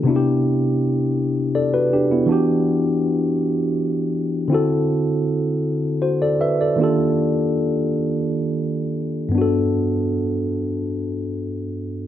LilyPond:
\new Staff \with { instrumentName = "Tine electric piano" } { \time 6/8 \key g \major \tempo 4. = 53 << { r2 <a' d''>16 <fis' b'>16 <d' g'>16 <b e'>16~ | <b e'>16 r2 r8. | r2 <fis' c''>16 <a' d''>16 <b' e''>16 <a' d''>16~ | <a' d''>16 r2 r8. |
r2. | } \\ { <c b d' e' fis' g'>2. | <e b d' fis' g'>2. | <d c' e' fis' a'>2. | <ees bes d' f' g' a'>2. |
<g, b d' fis' a'>2. | } >> }